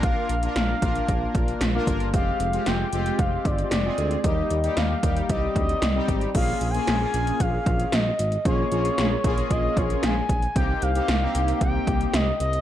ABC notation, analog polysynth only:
X:1
M:4/4
L:1/16
Q:1/4=114
K:Fdor
V:1 name="Analog polysynth"
[B,DFB]2 z [B,DFB]3 [B,DFB]6 z [B,DFB]3 | [A,CFG]3 [A,CFG]3 [A,CFG]6 z [A,CFA]3 | [G,B,EG]3 [G,B,EG]3 [G,B,EG]2 [G,CEG]4 z [G,CEG]3 | [K:Bbdor] [B,DFA]3 [B,DFA]2 [B,DFA]6- [B,DFA] z4 |
[B,DFA]2 [B,DFA]3 z [B,DFA]6- [B,DFA] z3 | [B,CEG]3 [B,CEG]2 [B,CEG]6- [B,CEG] z4 |]